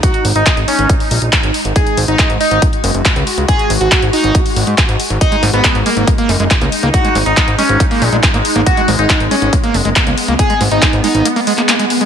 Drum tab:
HH |xxoxxxoxxooxxxox|xxoxxxoxxxoxxxox|xxoxxxoxxooxxxox|xxoxxxoxxxoxxxo-|
CP |----x-------x---|----x-------x---|----x-------x---|----x-------x---|
BD |o---o---o---o---|o---o---o---o---|o---o---o---o---|o---o---o---o---|

HH |xxoxxxoxxooxxxox|xxoxxxoxxxoxxxox|xxoxxxoxxooxxxox|
CP |----x-------x---|----x-------x---|----x------xx---|
BD |o---o---o---o---|o---o---o---o---|o---o-----------|